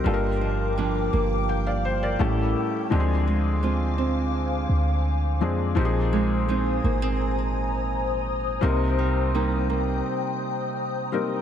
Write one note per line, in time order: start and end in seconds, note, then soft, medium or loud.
0.00 0.41 G3 medium
0.00 2.15 G3 medium
0.00 0.78 A#3 medium
0.00 0.13 D#4 medium
0.00 2.16 A#4 medium
0.00 2.88 G5 medium
0.05 1.09 G1 loud
0.05 2.20 G2 medium
0.05 2.15 A#3 medium
0.05 2.16 D4 medium
0.05 2.16 F4 medium
0.05 0.13 A4 medium
0.05 2.18 F5 medium
0.05 2.18 D6 medium
0.14 1.50 A#4 medium
0.41 0.76 F3 medium
0.78 2.27 F3 medium
0.78 1.12 A#3 medium
0.78 2.28 D4 medium
1.13 2.16 G1 loud
1.13 2.27 A#3 medium
1.49 1.66 G5 medium
1.67 1.84 D5 medium
1.67 1.83 F5 medium
1.85 2.02 C5 medium
2.03 2.37 A#4 medium
2.03 2.36 D5 medium
2.19 2.54 A1 loud
2.19 2.99 A2 medium
2.19 2.91 G3 medium
2.19 2.91 A3 medium
2.19 2.91 C#4 medium
2.19 2.92 E4 medium
2.19 2.92 A4 medium
2.90 4.66 D2 loud
2.90 5.77 D3 medium
2.90 5.37 F3 medium
2.90 5.37 G#3 medium
2.90 5.37 C4 medium
2.90 5.38 D4 medium
2.90 2.99 G4 medium
2.90 11.42 C5 medium
2.90 5.74 F5 medium
2.90 5.74 G#5 medium
2.90 5.74 D6 medium
3.00 5.41 G#4 medium
3.27 3.62 G#3 medium
3.63 6.12 G#3 medium
3.63 3.98 C4 medium
3.63 6.49 F4 medium
3.98 6.49 C4 medium
4.69 5.42 D2 loud
5.40 5.75 F2 loud
5.40 5.73 F3 medium
5.40 5.77 G#3 medium
5.40 5.75 C4 medium
5.40 5.77 D4 medium
5.40 5.78 G#4 medium
5.75 6.80 A#1 loud
5.75 8.63 A#2 medium
5.75 8.58 F3 medium
5.75 8.58 A#3 medium
5.75 8.58 C4 medium
5.75 8.59 D#4 medium
5.75 5.84 G4 medium
5.75 8.60 G#5 medium
5.75 11.42 A#5 medium
5.75 11.42 D#6 medium
5.85 8.63 G#4 medium
6.13 6.47 G#3 medium
6.48 8.70 G#3 medium
6.48 6.84 C4 medium
6.48 9.35 D#4 medium
6.84 8.59 G#1 loud
6.84 7.02 A#3 medium
7.02 8.70 C4 medium
8.61 10.01 C2 loud
8.61 11.42 C3 medium
8.61 11.08 G3 medium
8.61 11.08 A#3 medium
8.61 11.09 C4 medium
8.61 11.09 D#4 medium
8.61 11.09 A#4 medium
8.61 11.42 G5 medium
8.99 9.34 G3 medium
9.35 11.42 G3 medium
9.35 9.69 A#3 medium
9.35 11.42 D#4 medium
9.70 11.42 A#3 medium
11.12 11.42 G3 medium
11.12 11.42 A#3 medium
11.12 11.42 C4 medium
11.12 11.42 D#4 soft
11.12 11.42 A#4 medium